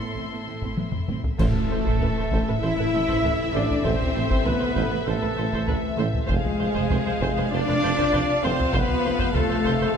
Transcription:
Already playing: A2 A3 C4 E4 A4 E5 C6
0.01 A2 B3
0.16 A1 A2 C4
0.31 A2 B3
0.47 A1 A2 C4
0.62 A2 C4, taiko
0.77 A1 A2 B3, taiko high
0.92 taiko low-mid
1.08 A1 A2 C4, taiko mid
1.24 taiko low
1.37 A1 A2 A3 E4 A4 C5 E5, concert bass drum, taiko, crash
1.41 C3 E3
1.54 taiko low
1.69 A1 A4 C5
1.85 A1 A4 C5, taiko
2.00 A1 A4 B4, taiko low
2.16 A1 A4 C5
2.31 A1 A4 C5, taiko
2.47 A1 A4 B4
2.60 A1 E4 A4 C5 E5
2.78 A1 A4 B4
2.93 A1 A4 C5
3.08 A1 A4 C5, taiko
3.23 A1 A4 B4, taiko low
3.53 A1 D4 A4 C5 D5
3.70 taiko low
3.84 A1 C4 A4 C5, taiko
4.01 taiko low
4.14 A1 A4 C5
4.29 A1 A4 C5, taiko
4.45 A1 B3 A4 B4, taiko low
4.59 A1 A4 C5
4.74 A1 A4 C5, taiko
4.90 A1 A4 B4
5.05 A1 A3 A4 C5
5.21 A1 A4 B4
5.36 A1 A4 C5
5.52 A1 A4 C5, taiko
5.67 A1 A4 B4, taiko low
5.97 A1 A4 C5
6.13 taiko low
6.27 F1 C3 F3 G#3 F4 G#4 C5 F5, taiko
6.45 taiko low
6.59 F1 C5
6.74 F1 C5, taiko
6.90 F1 B4 C5, taiko low
7.06 F1 C5
7.21 F1 C5, taiko
7.37 F1 B4 C5
7.51 F1 D4 C5 D5
7.67 F1 B4 C5
7.82 F1 C5
7.98 F1 C5, taiko
8.12 F1 B4 C5, taiko low
8.43 F1 C4 C5
8.59 taiko low
8.73 F1 B3 B4 C5, taiko
8.89 taiko low
9.04 F1 C5
9.19 F1 C5, taiko
9.33 F1 A3 A4 B4 C5, taiko low
9.50 F1 C5
9.64 F1 C5, taiko
9.81 F1 B4 C5
9.93 G#3

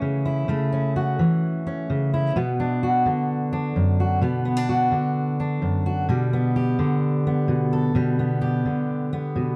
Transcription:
Already playing: E3 A3 C#4 F#4
0.02 C#3
0.25 E4
0.48 C#3 A3
0.72 C#4
0.96 F#4
1.19 E3
1.67 C#4
1.90 C#3
2.14 E4
2.36 B2 B3
2.60 D4
2.83 F#4
3.06 D3
3.53 D4
3.76 F#2
4.00 F#4
4.21 B2 B3
4.45 B3
4.57 D4
4.69 F#4
4.92 D3
5.40 D4
5.62 F#2
5.86 F#4
6.09 B2 G3
6.33 B3
6.56 G4
6.79 D3
7.27 B3
7.48 B2
7.73 A4
7.95 B2 G3
8.19 B3
8.41 G4
8.65 D3
9.13 B3
9.36 B2

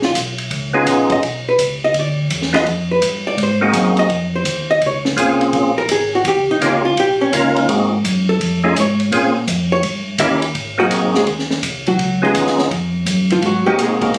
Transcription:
Already playing: A#1
0.02 F4, snare
0.14 B1, kick, hi-hat pedal, ride
0.38 ride
0.51 C#2, kick, ride
0.73 B3 C#4 D#4 F4 G#4
0.86 A#1, kick, hi-hat pedal, ride
1.10 D#5, kick, ride
1.22 B1, kick, ride
1.49 B4
1.58 C#2, kick, hi-hat pedal, ride
1.84 D#5
1.94 D2, kick, ride
1.99 D5
2.30 E2, kick, hi-hat pedal, ride
2.42 snare
2.53 B3 D4 E4 F4 G#4 D#5, snare, ride
2.66 F2, kick, ride
2.91 B4
3.02 G2, kick, hi-hat pedal, ride
3.27 D5
3.37 G#2, kick, ride
3.43 C5
3.61 A#3 C4 D#4 F#4 G#4
3.73 F#2, kick, hi-hat pedal, ride
3.97 D#5, ride
4.09 F2, kick, ride
4.36 C5
4.45 D#2, kick, hi-hat pedal, ride
4.71 D#5
4.81 C#2, kick, ride
4.86 C#5
5.05 snare
5.17 C2 A#3 C4 C#4 F4 G#4, kick, hi-hat pedal, ride
5.41 ride
5.53 A#1, kick, ride
5.78 A#4
5.88 G#1 G#4, kick, hi-hat pedal, ride
6.15 F#4
6.25 D#2 G4, kick, ride
6.37 C#2
6.49 A#1 D#4
6.60 C#2 A#3 C#4 D#4 F4 G4, kick, hi-hat pedal, ride
6.85 F4
6.97 A#1 G4, kick, ride
7.21 C#4
7.32 C#2 A#3 C#4 D#4 F4 A#4, kick, hi-hat pedal, ride
7.56 ride
7.68 G#2 A#3 C4 D#4 F#4 G#4, kick, ride
8.04 F#2, kick, hi-hat pedal, ride
8.29 A4
8.40 F2, kick, ride
8.64 A3 C#4 D#4 F4 G#4
8.76 G#2 C#5, kick, hi-hat pedal, ride
9.00 ride
9.11 A#2 A#3 C4 C#4 F4 G#4, kick, ride
9.47 F2, kick, hi-hat pedal, ride
9.72 C#5
9.83 G2, kick, ride
10.18 D#2 A#3 C#4 D#4 E4 G4 E5, kick, hi-hat pedal, ride
10.42 ride
10.55 G#1, kick, ride
10.78 F#3 A#3 C4 D#4 F#4 G#4
10.91 A#1, kick, hi-hat pedal, ride
11.03 G#1
11.15 F#1 G#3 G#4, snare
11.27 D#2, kick, ride
11.39 snare
11.51 snare
11.62 C2, kick, hi-hat pedal, ride
11.86 F#3 F#4, ride
11.99 C#2, kick, ride
12.22 G#3 B3 C#4 D#4 F4 G#4
12.34 D#2, kick, hi-hat pedal, ride
12.47 snare
12.58 D#2, snare
12.70 F2, kick, ride
13.06 F#2, kick, hi-hat pedal, ride
13.30 F3 F4, ride
13.42 G#2 F#4, kick, ride
13.46 F#3
13.65 G#2 G3 A#3 C4 D#4 F#4 G4 G#4
13.78 A#2, kick, hi-hat pedal, ride
13.82 G#3 G#4
14.02 A#3 A#4, kick, ride
14.14 G#2, kick, ride

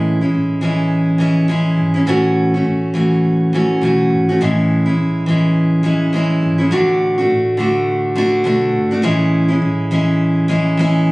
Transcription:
Already playing: A1 A2 E3 G#3 C#4 E4
0.21 G#3 C#4 E4
0.34 A1
0.61 E3 G#3 C#4 E4
1.18 E3 G#3 C#4 E4
1.48 E3 G#3 C#4 E4
1.77 G#1
1.94 G#3 C#4 E4
2.06 A1 A2 E3 A3 C#4 F#4
2.54 A3 C#4 F#4
2.64 A1
2.94 E3 A3 C#4 F#4
3.53 E3 A3 C#4 F#4
3.81 B1 E3 A3 C#4
3.85 F#4
4.10 G#1
4.29 A3 C#4 F#4
4.39 A1 A2 E3 G#3 C#4
4.43 E4
4.86 G#3 C#4 E4
4.97 A1
5.26 E3 G#3 C#4
5.30 E4
5.83 E3 G#3 C#4 E4
6.13 E3 G#3 C#4 E4
6.43 G#1
6.58 G#3 C#4 E4
6.71 A1 A2 D3 A3 D4 F#4
7.18 A3 D4 F#4
7.30 A1
7.57 D3 A3 D4 F#4
8.15 D3 A3 D4 F#4
8.44 B1 D3 A3 D4 F#4
8.75 G#1
8.91 A3 D4 F#4
9.02 A1 A2 E3 G#3 C#4 E4
9.48 G#3 C#4 E4
9.62 A1
9.91 E3 G#3 C#4 E4
10.48 E3 G#3 C#4 E4
10.77 E3 G#3 C#4 E4
11.07 G#1

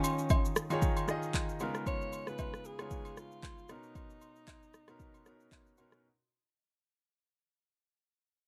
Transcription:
Already playing: D#3 C#4 D#4 F4 G#4 C#5
0.04 high agogo, shaker
0.19 shaker
0.29 kick, high agogo, low woodblock, shaker
0.45 shaker
0.56 cross-stick, shaker
0.70 D#3 D#4 F4 G#4 C#5, high agogo, shaker
0.82 kick, shaker
0.97 high agogo, shaker
1.08 D#3 D#4 F4 G#4 D#5, cross-stick, shaker
1.23 shaker
1.34 kick, clap, high agogo, shaker
1.49 shaker
1.60 C#3 G#3 B3 D#4 F4 A#4, high agogo, shaker
1.74 cross-stick, shaker
1.87 C#5, kick, high agogo, shaker
2.01 shaker
2.13 high agogo, shaker
2.26 C#3 G#3 B3 D#4 F4 B4, cross-stick, shaker
2.38 kick, high agogo, low woodblock, shaker
2.54 cross-stick, shaker
2.65 G#4, shaker
2.79 C#3 G#3 B3 D#4 F4 C#5, cross-stick, high agogo, shaker
2.91 kick, shaker
3.05 high agogo, shaker
3.17 F4, cross-stick, shaker
3.32 shaker
3.43 kick, clap, high agogo, shaker
3.58 shaker
3.69 B2 B3 C#4 D#4 A#4, cross-stick, high agogo, shaker
3.83 shaker
3.95 kick, high agogo, shaker
4.10 shaker
4.21 high agogo, shaker
4.36 shaker
4.47 kick, clap, high agogo, low woodblock, shaker
4.63 shaker
4.74 cross-stick, shaker
4.87 B2 B3 C#4 D#4 A#4, cross-stick, high agogo, shaker
5.00 kick, shaker
5.14 high agogo, shaker
5.25 B2 B3 C#4 D#4 A#4, cross-stick, shaker
5.40 shaker
5.51 kick, clap, high agogo, low woodblock, shaker
5.67 shaker
5.77 B2 B3 C#4 D#4 A#4, high agogo, shaker
5.92 cross-stick, shaker

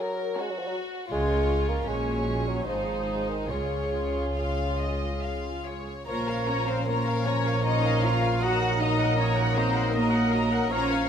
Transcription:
Already playing: F#3 C#4 A#4
0.01 A#4
0.38 G#3 C#4 F#4 A#4 C#5
0.50 F#3
0.59 F3
0.67 F#3
1.11 C#2 G#3 C#4 F4 C#5
1.68 A#3
1.86 A#1 A#2 G#3 C#4 F#4 C#5
2.48 F#3
2.67 G#1 G#2 F3 D#4 G#4 C5
3.29 D#3
3.49 C#2 C#3 F4 G#4 C#5
4.35 F5
4.79 D#5
5.23 F5
5.66 C#5
6.07 A#1 F3 A#3 C#4 F4 A#4 C#5 A#5
6.28 A#4 F5
6.48 C#4 F4 C#5 A#5
6.67 C4 A#4 C5 F5
6.86 F3 A#3 F4 A#4 C#5 A#5
7.06 A#4 F5
7.26 C#4 F4 C#5 A#5
7.46 A#4 F5
7.64 D#4 F4 C#5 D#5 A#5
7.84 A#4 F5
8.03 F4 C#5 F5 A#5
8.22 A#4 F5
8.42 F#3 D#4 F#4 A#4 D#5 F#5 A#5
8.62 A#4 F#5
8.80 D#4 F#4 D#5 A#5
9.00 A#4 F#5
9.18 C#4 F#4 C#5 D#5 A#5
9.37 A#4 F#5
9.56 C4 F#4 C5 D#5 A#5
9.75 A#4 F#5
9.94 F#3 A#3 F#4 A#4 D#5 A#5
10.14 A#4 F#5
10.33 F#4 D#5 A#5
10.51 A#4 F#5
10.71 A#1 F3 A#3 C#4 F4 A#4 C#5 F5 A#5
10.91 A#4 F5

